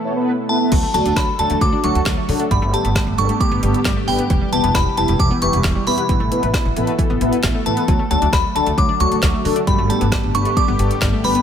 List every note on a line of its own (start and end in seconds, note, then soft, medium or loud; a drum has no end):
0.00 0.68 B2 medium
0.00 0.68 E3 medium
0.00 0.70 A3 medium
0.00 0.68 E4 medium
0.00 0.70 A4 medium
0.00 0.23 A5 medium
0.05 0.12 B3 medium
0.05 0.13 E4 medium
0.05 0.12 A4 medium
0.05 0.12 C#5 loud
0.16 0.32 B3 medium
0.16 0.32 E4 medium
0.16 0.32 A4 medium
0.16 0.31 B4 loud
0.49 0.57 B3 medium
0.49 0.57 E4 medium
0.49 0.57 A4 medium
0.49 0.57 B4 loud
0.49 0.93 A5 medium
0.61 0.72 B3 medium
0.61 0.72 E4 medium
0.61 0.72 A4 medium
0.61 0.72 B4 medium
0.72 0.81 D2 loud
0.72 4.26 D3 medium
0.72 2.49 F#3 medium
0.72 0.79 F#3 medium
0.72 4.26 A3 medium
0.72 2.49 F#4 medium
0.72 2.49 A4 medium
0.72 kick loud
0.72 closed hi-hat medium
0.72 crash medium
0.83 0.90 A3 medium
0.94 1.03 D2 loud
0.94 1.02 F#3 medium
0.94 1.10 A3 medium
0.94 1.10 D4 medium
0.94 1.10 F#4 medium
0.94 1.10 A4 medium
0.94 1.17 A5 medium
0.94 closed hi-hat medium
1.05 1.15 D2 loud
1.05 1.13 D4 medium
1.05 closed hi-hat medium
1.16 1.24 F#3 medium
1.16 1.38 B5 medium
1.16 kick loud
1.16 snare loud
1.16 closed hi-hat medium
1.39 1.48 D2 loud
1.39 1.46 F#3 medium
1.39 1.55 A3 medium
1.39 1.55 D4 medium
1.39 1.55 F#4 medium
1.39 1.55 A4 medium
1.39 1.62 A5 medium
1.39 closed hi-hat medium
1.50 1.59 D2 loud
1.50 1.57 A3 medium
1.50 closed hi-hat medium
1.61 1.70 D2 loud
1.61 1.69 F#3 medium
1.61 1.85 D6 loud
1.61 kick loud
1.61 closed hi-hat medium
1.72 1.80 D4 medium
1.84 1.93 D2 loud
1.84 1.91 F#3 medium
1.84 1.99 A3 medium
1.84 1.99 D4 medium
1.84 1.99 F#4 medium
1.84 1.99 A4 medium
1.84 2.26 C#6 loud
1.84 closed hi-hat medium
1.95 2.04 D2 loud
1.95 closed hi-hat medium
2.06 2.15 D2 loud
2.06 2.13 F#3 medium
2.06 kick loud
2.06 snare loud
2.06 clap medium
2.06 closed hi-hat medium
2.17 2.25 A3 medium
2.28 2.38 D3 loud
2.28 2.36 F#3 medium
2.28 2.44 A3 medium
2.28 2.44 D4 medium
2.28 2.44 F#4 medium
2.28 2.44 A4 medium
2.28 open hi-hat medium
2.40 2.47 D4 medium
2.40 closed hi-hat medium
2.51 2.60 G1 loud
2.51 4.28 G3 medium
2.51 2.58 G3 medium
2.51 4.28 B3 medium
2.51 6.06 G4 medium
2.51 2.74 B5 medium
2.51 kick loud
2.51 closed hi-hat medium
2.62 2.71 G1 loud
2.62 2.69 A3 medium
2.73 2.80 G3 medium
2.73 2.89 B3 medium
2.73 2.89 D4 medium
2.73 2.89 G4 medium
2.73 2.89 A4 medium
2.73 3.20 A5 medium
2.73 closed hi-hat medium
2.85 2.94 G1 loud
2.85 2.92 B3 medium
2.85 closed hi-hat medium
2.95 3.03 G3 medium
2.95 kick loud
2.95 snare loud
2.95 closed hi-hat medium
3.07 3.16 G1 loud
3.18 3.27 G1 loud
3.18 3.25 G3 medium
3.18 3.34 B3 medium
3.18 3.34 D4 medium
3.18 3.34 G4 medium
3.18 3.34 A4 medium
3.18 3.41 C#6 loud
3.18 closed hi-hat medium
3.29 3.36 A3 medium
3.29 closed hi-hat medium
3.40 3.48 G3 medium
3.40 3.82 D6 loud
3.40 kick loud
3.40 closed hi-hat medium
3.51 3.61 G1 loud
3.51 3.59 B3 medium
3.63 3.72 G1 loud
3.63 3.70 G3 medium
3.63 3.79 B3 medium
3.63 3.79 D4 medium
3.63 3.79 G4 medium
3.63 3.79 A4 medium
3.63 closed hi-hat medium
3.74 closed hi-hat medium
3.85 3.94 G1 loud
3.85 3.92 G3 medium
3.85 kick loud
3.85 snare loud
3.85 clap medium
3.85 closed hi-hat medium
3.96 4.04 A3 medium
4.08 4.17 G1 loud
4.08 4.15 G3 medium
4.08 4.23 B3 medium
4.08 4.23 D4 medium
4.08 4.23 G4 medium
4.08 4.23 B4 medium
4.08 4.54 G5 medium
4.08 open hi-hat medium
4.19 4.26 B3 medium
4.19 closed hi-hat medium
4.30 4.39 E1 loud
4.30 7.85 B2 medium
4.30 4.37 E3 loud
4.30 7.85 E3 medium
4.30 6.07 G3 medium
4.30 7.85 E4 medium
4.30 kick loud
4.30 closed hi-hat medium
4.41 4.48 G3 medium
4.52 4.62 E1 loud
4.52 4.60 E3 medium
4.52 4.68 B3 medium
4.52 4.68 E4 medium
4.52 4.68 G4 medium
4.52 4.68 B4 medium
4.52 4.76 A5 medium
4.52 closed hi-hat medium
4.64 4.73 E1 loud
4.64 4.71 B3 medium
4.64 closed hi-hat medium
4.75 4.84 E1 loud
4.75 4.82 E3 medium
4.75 4.98 B5 medium
4.75 kick loud
4.75 snare loud
4.75 closed hi-hat medium
4.97 5.07 E1 loud
4.97 5.04 E3 medium
4.97 5.13 B3 medium
4.97 5.13 E4 medium
4.97 5.13 G4 medium
4.97 5.13 B4 medium
4.97 5.21 A5 medium
4.97 closed hi-hat medium
5.08 5.18 E1 loud
5.08 5.16 G3 medium
5.08 closed hi-hat medium
5.19 5.29 E1 loud
5.19 5.27 E3 medium
5.19 5.43 D6 loud
5.19 kick loud
5.19 closed hi-hat medium
5.31 5.38 B3 medium
5.42 5.51 E1 medium
5.42 5.49 E3 medium
5.42 5.58 B3 medium
5.42 5.58 E4 medium
5.42 5.58 G4 medium
5.42 5.58 B4 medium
5.42 5.88 C#6 loud
5.42 closed hi-hat medium
5.53 5.62 E1 loud
5.53 closed hi-hat medium
5.64 5.74 E1 loud
5.64 5.71 E3 medium
5.64 kick loud
5.64 snare loud
5.64 clap medium
5.64 closed hi-hat medium
5.75 5.83 G3 medium
5.87 5.96 E2 loud
5.87 5.94 E3 medium
5.87 6.02 B3 medium
5.87 6.02 E4 medium
5.87 6.02 G4 medium
5.87 6.02 B4 medium
5.87 6.50 B5 medium
5.87 open hi-hat medium
5.98 6.05 B3 medium
5.98 closed hi-hat medium
6.09 6.18 A1 loud
6.09 6.16 E3 medium
6.09 11.42 A3 medium
6.09 9.64 A4 medium
6.09 kick loud
6.09 closed hi-hat medium
6.20 6.29 A1 medium
6.20 6.27 A3 medium
6.31 6.39 E3 medium
6.31 6.47 B3 medium
6.31 6.47 E4 medium
6.31 6.47 A4 medium
6.31 6.47 B4 medium
6.31 closed hi-hat medium
6.43 6.52 A1 loud
6.43 6.50 B3 medium
6.43 closed hi-hat medium
6.54 6.61 E3 medium
6.54 kick loud
6.54 snare loud
6.54 closed hi-hat medium
6.65 6.74 A1 loud
6.76 6.85 A1 loud
6.76 6.83 E3 medium
6.76 6.92 B3 medium
6.76 6.92 E4 medium
6.76 6.92 A4 medium
6.76 6.92 B4 loud
6.76 closed hi-hat medium
6.87 6.95 A3 medium
6.87 closed hi-hat medium
6.99 7.06 E3 medium
6.99 kick loud
6.99 closed hi-hat medium
7.10 7.19 A1 medium
7.10 7.17 B3 medium
7.21 7.30 A1 loud
7.21 7.28 E3 medium
7.21 7.37 B3 medium
7.21 7.37 E4 medium
7.21 7.37 A4 medium
7.21 7.37 B4 loud
7.21 closed hi-hat medium
7.33 closed hi-hat medium
7.43 7.53 A1 loud
7.43 7.51 E3 medium
7.43 kick loud
7.43 snare loud
7.43 clap medium
7.43 closed hi-hat medium
7.55 7.62 A3 medium
7.66 7.75 A1 medium
7.66 7.73 E3 medium
7.66 7.82 B3 medium
7.66 7.82 E4 medium
7.66 7.82 A4 medium
7.66 7.82 B4 medium
7.66 8.10 A5 medium
7.66 closed hi-hat medium
7.77 7.84 B3 medium
7.77 closed hi-hat medium
7.88 7.97 D2 loud
7.88 11.42 D3 medium
7.88 9.65 F#3 medium
7.88 7.95 F#3 medium
7.88 9.65 F#4 medium
7.88 kick loud
7.88 closed hi-hat medium
7.99 8.07 A3 medium
8.11 8.20 D2 loud
8.11 8.18 F#3 medium
8.11 8.26 A3 medium
8.11 8.26 D4 medium
8.11 8.26 F#4 medium
8.11 8.26 A4 medium
8.11 8.34 A5 medium
8.11 closed hi-hat medium
8.22 8.31 D2 loud
8.22 8.29 D4 medium
8.22 closed hi-hat medium
8.33 8.42 D2 loud
8.33 8.40 F#3 medium
8.33 8.56 B5 medium
8.33 kick loud
8.33 snare loud
8.33 closed hi-hat medium
8.55 8.65 D2 loud
8.55 8.63 F#3 medium
8.55 8.71 A3 medium
8.55 8.71 D4 medium
8.55 8.71 F#4 medium
8.55 8.71 A4 medium
8.55 8.79 A5 medium
8.55 closed hi-hat medium
8.67 8.76 D2 loud
8.67 8.74 A3 medium
8.67 closed hi-hat medium
8.78 8.87 D2 loud
8.78 8.85 F#3 medium
8.78 8.99 D6 loud
8.78 kick loud
8.78 closed hi-hat medium
8.89 8.96 D4 medium
9.00 9.09 D2 medium
9.00 9.07 F#3 medium
9.00 9.16 A3 medium
9.00 9.16 D4 medium
9.00 9.16 F#4 medium
9.00 9.16 A4 medium
9.00 9.42 C#6 loud
9.00 closed hi-hat medium
9.12 9.21 D2 loud
9.12 closed hi-hat medium
9.22 9.32 D2 loud
9.22 9.30 F#3 medium
9.22 kick loud
9.22 snare loud
9.22 clap medium
9.22 closed hi-hat medium
9.34 9.41 A3 medium
9.45 9.54 D3 loud
9.45 9.52 F#3 medium
9.45 9.61 A3 medium
9.45 9.61 D4 medium
9.45 9.61 F#4 medium
9.45 9.61 A4 medium
9.45 open hi-hat medium
9.56 9.63 D4 medium
9.56 closed hi-hat medium
9.67 9.77 G1 loud
9.67 9.74 G3 medium
9.67 11.42 G3 medium
9.67 11.42 B3 medium
9.67 11.42 G4 medium
9.67 9.90 B5 medium
9.67 kick loud
9.67 closed hi-hat medium
9.78 9.88 G1 loud
9.78 9.86 A3 medium
9.90 9.97 G3 medium
9.90 10.05 B3 medium
9.90 10.05 D4 medium
9.90 10.05 G4 medium
9.90 10.05 A4 medium
9.90 10.36 A5 medium
9.90 closed hi-hat medium
10.01 10.10 G1 loud
10.01 10.08 B3 medium
10.01 closed hi-hat medium
10.12 10.19 G3 medium
10.12 kick loud
10.12 snare loud
10.12 closed hi-hat medium
10.24 10.33 G1 loud
10.34 10.44 G1 loud
10.34 10.42 G3 medium
10.34 10.50 B3 medium
10.34 10.50 D4 medium
10.34 10.50 G4 medium
10.34 10.50 B4 medium
10.34 10.56 C#6 loud
10.34 closed hi-hat medium
10.45 10.53 A3 medium
10.45 closed hi-hat medium
10.57 10.64 G3 medium
10.57 10.99 D6 loud
10.57 kick loud
10.57 closed hi-hat medium
10.68 10.77 G1 loud
10.68 10.75 B3 medium
10.79 10.88 G1 loud
10.79 10.86 G3 medium
10.79 10.95 B3 medium
10.79 10.95 D4 medium
10.79 10.95 G4 medium
10.79 10.95 A4 medium
10.79 closed hi-hat medium
10.91 closed hi-hat medium
11.02 11.11 G1 loud
11.02 11.09 G3 medium
11.02 kick loud
11.02 snare loud
11.02 clap medium
11.02 closed hi-hat medium
11.13 11.20 A3 medium
11.24 11.33 G1 loud
11.24 11.31 G3 medium
11.24 11.40 B3 medium
11.24 11.40 D4 medium
11.24 11.40 G4 medium
11.24 11.40 B4 medium
11.24 11.42 B5 loud
11.24 open hi-hat medium
11.35 11.42 B3 medium
11.35 closed hi-hat medium